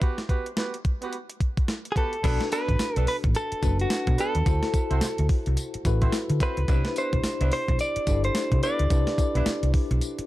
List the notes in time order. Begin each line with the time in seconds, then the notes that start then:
0.01 B3 F#4 G4 B4, kick, closed hi-hat
0.18 snare, closed hi-hat
0.29 B3 F#4 G4 B4, kick, closed hi-hat
0.46 closed hi-hat
0.57 B3 F#4 G4 B4, snare, closed hi-hat
0.74 closed hi-hat
0.85 kick, closed hi-hat
1.01 B3 F#4 G4 B4, closed hi-hat
1.13 closed hi-hat
1.29 closed hi-hat
1.40 kick, closed hi-hat
1.57 kick, closed hi-hat
1.68 snare, closed hi-hat
1.85 closed hi-hat
1.92 F#4 G4 G#4
1.96 B3 A4 B4, kick, closed hi-hat
2.13 closed hi-hat
2.23 B1 B3 D4 F#4 A4 B4, kick, closed hi-hat, crash, tambourine
2.41 snare, closed hi-hat
2.51 B3 D4 A4 B4, closed hi-hat, tambourine
2.69 A1, kick, closed hi-hat
2.79 snare, closed hi-hat, tambourine
2.95 B1 B3 D4 A4 B4, closed hi-hat
3.07 B4, open hi-hat
3.24 A1, kick, closed hi-hat
3.35 A4, closed hi-hat, tambourine
3.52 muted fingered electric bass stroke, closed hi-hat
3.62 F#1 D4 F#4 A4 B4, kick, closed hi-hat, tambourine
3.79 F#4, closed hi-hat
3.90 snare, closed hi-hat, tambourine
4.07 B2, kick, closed hi-hat
4.18 B3 D4 A4 B4, closed hi-hat, tambourine
4.35 D#2, closed hi-hat
4.46 D2 E4 F#4 A4 C5, kick, closed hi-hat, tambourine
4.63 snare, closed hi-hat
4.74 kick, closed hi-hat, tambourine
4.90 C2 C4 E4 F#4 C5, closed hi-hat
5.01 snare, closed hi-hat, tambourine
5.18 D2, closed hi-hat
5.29 kick, open hi-hat
5.46 C2, closed hi-hat
5.57 closed hi-hat, tambourine
5.74 muted fingered electric bass stroke, closed hi-hat
5.85 A1 E4 F#4 A4 B4, kick, closed hi-hat, tambourine
6.01 C4 E4 F#4 C5, kick, closed hi-hat
6.12 snare, closed hi-hat, tambourine
6.29 D3, closed hi-hat
6.40 C4 E4 F#4 B4 C5, kick, closed hi-hat, tambourine
6.57 C#2, closed hi-hat
6.68 C2 B3 D4 E4 G4 B4 C5, kick, closed hi-hat, tambourine
6.85 snare, closed hi-hat
6.96 B3 D4 E4 B4 C5, closed hi-hat, tambourine
7.13 B1, kick, closed hi-hat
7.24 muted fingered electric bass stroke, snare, closed hi-hat, tambourine
7.40 C2 B3 D4 E4 B4, closed hi-hat
7.52 C5, open hi-hat
7.68 B1, kick, closed hi-hat
7.79 D5, closed hi-hat, tambourine
7.96 muted fingered electric bass stroke, closed hi-hat
8.07 G1 D4 E4 G4 A4, kick, closed hi-hat, tambourine
8.24 C5, closed hi-hat
8.35 snare, closed hi-hat, tambourine
8.52 C3, kick, closed hi-hat
8.63 B3 D4 E4 B4 D5, closed hi-hat, tambourine
8.79 C#2, closed hi-hat
8.90 C2 D4 E4 G4 B4, kick, closed hi-hat, tambourine
9.07 snare, closed hi-hat
9.18 kick, closed hi-hat, tambourine
9.35 B1 B3 D4 E4 B4, closed hi-hat
9.46 snare, closed hi-hat, tambourine
9.63 C2, closed hi-hat
9.74 kick, open hi-hat
9.91 B1, closed hi-hat
10.01 closed hi-hat, tambourine
10.19 muted fingered electric bass stroke, closed hi-hat